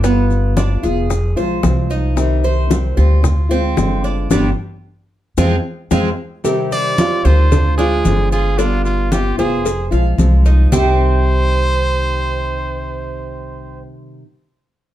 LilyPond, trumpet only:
\new Staff \with { instrumentName = "Trumpet" } { \time 4/4 \key c \minor \tempo 4 = 112 r1 | r1 | r1 | r8 d''4 c''4 aes'4 aes'8 |
f'8 f'8 g'8 aes'4 r4. | c''1~ | c''1 | }